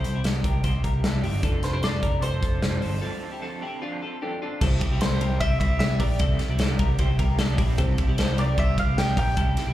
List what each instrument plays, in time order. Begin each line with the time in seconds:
Already playing: clean electric guitar E4 A4, mandolin C5
0.04 picked electric bass C2, clean electric guitar C4 E4 G4, closed hi-hat
0.15 clean electric guitar E4 G4
0.24 picked electric bass C2, clean electric guitar G3 C4 E4 G4 A4, snare, closed hi-hat
0.44 picked electric bass C2, clean electric guitar C4 E4 G4 A#4, kick, closed hi-hat
0.64 picked electric bass C2, clean electric guitar C3 G3 C4 E4 G4 C5, kick, closed hi-hat
0.84 picked electric bass C2, clean electric guitar C4 E4 G4 A#4, kick, closed hi-hat
1.03 picked electric bass C2, clean electric guitar G3 C4 E4 G4 A4, snare, closed hi-hat
1.23 picked electric bass G1, clean electric guitar C4 E4 G4, open hi-hat
1.42 picked electric bass F1, clean electric guitar F3 C4 D4 F4 A4, upright piano D4 F4 A4, kick, closed hi-hat
1.62 picked electric bass F1, clean electric guitar C4 D4 A4, mandolin C5, snare, closed hi-hat
1.73 clean electric guitar E4 G4, mandolin C5
1.83 picked electric bass F1, clean electric guitar F3 C4 D4 F4 A4, mandolin D5, snare, closed hi-hat
2.02 picked electric bass F1, clean electric guitar C4 D4 G4 A4 A#4, kick, closed hi-hat
2.22 picked electric bass F1, clean electric guitar F3 C4 D4 A4 C5, mandolin C5, closed hi-hat
2.42 picked electric bass F1, clean electric guitar C4 D4 F4 A4, kick, closed hi-hat
2.62 picked electric bass F1, clean electric guitar F3 C4 D4 A4, snare, closed hi-hat
2.82 picked electric bass G1, clean electric guitar C4 D4 A4 C5, open hi-hat
3.01 clean electric guitar F3 C4 D4 F4 A4
3.22 clean electric guitar C4 D4 A4
3.32 clean electric guitar E4 G4
3.42 clean electric guitar F3 C4 D4 F4 A4
3.61 clean electric guitar C4 D4 E4 G4 A4
3.82 clean electric guitar F3 C4 D4 F4 A4
4.02 clean electric guitar C4 D4 F4 A4
4.21 clean electric guitar F3 C4 D4 G4 A4, upright piano D4 F4 A4
4.41 clean electric guitar C4 D4 F4 A4
4.61 picked electric bass C2, clean electric guitar C3 G3 C4 E4 G4 A4, upright piano C4 E4 G4 C5, kick, crash
4.81 clean electric guitar C4 E4 G4, kick, ride
4.91 picked electric bass C2, clean electric guitar E4 G4
5.01 picked electric bass C2, clean electric guitar C3 G3 C4 E4 G4 A4, mandolin C5, snare, ride
5.20 picked electric bass C2, clean electric guitar C4 E4 G4 A#4, ride
5.40 picked electric bass C2, clean electric guitar G3 C4 E4 G4 C5, mandolin E5, kick, ride
5.60 picked electric bass C2, clean electric guitar C4 E4 G4, mandolin E5, kick, ride
5.79 picked electric bass C2, clean electric guitar C3 G3 C4 E4 G4, mandolin E5, snare, ride
6.00 picked electric bass A#1, clean electric guitar C4 E4 G4 A#4, mandolin D5, kick, open hi-hat, ride
6.19 picked electric bass C2, clean electric guitar C3 G3 C4 E4 G4 A4, kick, hi-hat pedal, ride
6.39 clean electric guitar E4 G4, snare, ride
6.49 picked electric bass C2, clean electric guitar E4 G4
6.59 picked electric bass C2, clean electric guitar C3 G3 C4 E4 G4 A4, snare, ride
6.79 picked electric bass C2, clean electric guitar C4 E4 G4 A#4, kick, ride
6.99 picked electric bass C2, clean electric guitar G3 C4 E4 G4 C5, kick, ride
7.19 picked electric bass C2, clean electric guitar C4 E4 G4 A#4, kick, ride
7.39 picked electric bass C2, clean electric guitar C3 G3 C4 E4 G4 A4, snare, ride
7.58 picked electric bass A#1, clean electric guitar C4 E4 G4, kick, open hi-hat, ride
7.78 picked electric bass C2, clean electric guitar C3 G3 C4 E4 G4 A4, upright piano C4 E4 G4 C5, kick, hi-hat pedal, ride
7.98 clean electric guitar C4 E4 G4, kick, ride
8.08 picked electric bass C2, clean electric guitar E4 G4
8.18 picked electric bass C2, clean electric guitar C3 G3 C4 E4 G4 A4, mandolin C5, snare, ride
8.37 picked electric bass C2, clean electric guitar C4 E4 G4 A#4, mandolin D5, ride
8.57 picked electric bass C2, clean electric guitar G3 C4 E4 G4 C5, mandolin E5, kick, ride
8.77 picked electric bass C2, clean electric guitar C4 E4 G4, mandolin F5, kick, ride
8.97 picked electric bass C2, clean electric guitar C3 G3 C4 E4 G4, mandolin G5, snare, ride
9.17 picked electric bass A#1, clean electric guitar C4 E4 G4 A#4, mandolin G5, kick, open hi-hat, ride
9.37 picked electric bass C2, clean electric guitar C3 G3 C4 E4 G4 A4, kick, hi-hat pedal, ride
9.57 clean electric guitar C4 E4 G4, snare, ride
9.67 picked electric bass C2, clean electric guitar E4 G4